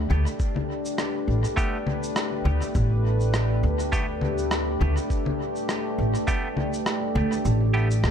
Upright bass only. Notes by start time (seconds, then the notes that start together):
0.10 D2
1.28 A1
2.45 D2
2.75 A1
3.63 D2
4.81 D2
5.98 A1
7.15 D2
7.45 A1
8.03 D2